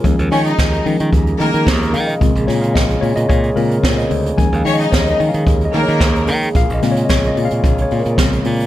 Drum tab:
HH |xxoxxxoxxxoxxxox|xxoxxxoxxxoxxxox|xxoxxxoxxxoxxxox|xxoxxxoxxxoxxxox|
SD |----o-------o---|--o-o-------o---|----o-------o---|--o-o-------o---|
BD |o---o---o---o---|o---o---o---o---|o---o---o---o---|o---o---o---o---|